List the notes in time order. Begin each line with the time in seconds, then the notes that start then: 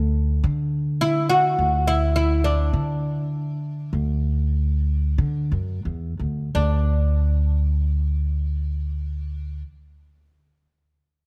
Already playing: D2
0.44 D3
1.01 E4
1.30 F#4
1.59 D2
1.87 E4
2.16 E4
2.44 D4
2.73 D3
3.93 D2
5.18 D3
5.52 F#2
5.85 E2
6.19 D2
6.55 D2 D4